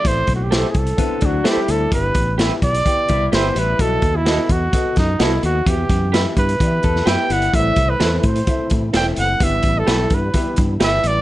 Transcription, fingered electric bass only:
X:1
M:4/4
L:1/16
Q:1/4=128
K:Ador
V:1 name="Fingered electric bass" clef=bass
A,,,2 B,,,4 C,,2 z2 D,,2 z2 D,,2 | G,,,2 A,,,4 B,,,2 z2 C,,2 G,,,2 A,,,2 | B,,,2 ^D,,4 E,,2 z2 F,,2 C,,2 D,,2 | E,,2 F,,4 G,,2 E,2 E,,2 F,, z G,,,2 |
A,,,2 C,,2 E,,2 A,,2 z2 A,,2 E,,,2 F,,,2 | G,,,2 A,,,2 B,,,2 G,,2 z2 G,,2 G,,,2 A,,,2 |]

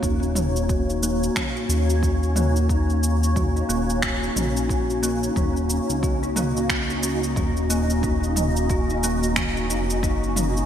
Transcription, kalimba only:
X:1
M:4/4
L:1/16
Q:"Swing 16ths" 1/4=90
K:Ebm
V:1 name="Kalimba"
E4 G E B, z2 G D z G z B, z | E4 G E B, z2 G D z G z B, z | E4 G E B, z2 G D z G z B, z | E4 G E B, z2 G E z E z E z |]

